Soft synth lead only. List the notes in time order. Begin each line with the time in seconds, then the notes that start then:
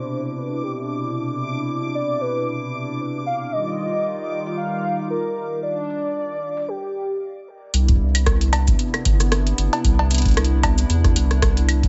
Already playing: C5
0.37 B4
0.63 G4
1.95 D5
2.21 B4
3.26 F5
3.52 D#5
4.58 F5
5.10 A#4
5.63 D5
6.68 G4